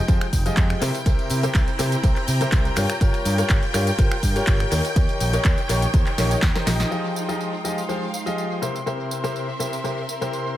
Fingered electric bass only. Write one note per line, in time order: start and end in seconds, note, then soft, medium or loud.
0.08 0.16 F2 medium
0.33 0.48 F1 medium
0.57 0.73 F2 medium
0.82 0.89 C3 loud
1.06 1.14 C2 loud
1.30 1.46 C3 medium
1.55 1.63 C2 loud
1.79 1.94 C3 medium
2.04 2.11 C2 medium
2.28 2.43 C3 medium
2.52 2.68 C2 medium
2.77 2.84 G2 loud
3.01 3.09 G1 medium
3.25 3.41 G2 medium
3.50 3.58 G1 loud
3.74 3.90 G2 medium
3.99 4.06 G1 loud
4.23 4.38 G2 loud
4.47 4.63 G1 medium
4.72 4.80 D#2 loud
4.96 5.04 D#2 loud
5.21 5.36 A#1 medium
5.45 5.53 D#2 loud
5.69 5.85 A#1 medium
5.94 6.02 D#2 loud
6.18 6.34 A#1 medium
6.42 6.50 D#2 medium
6.67 6.82 A#1 medium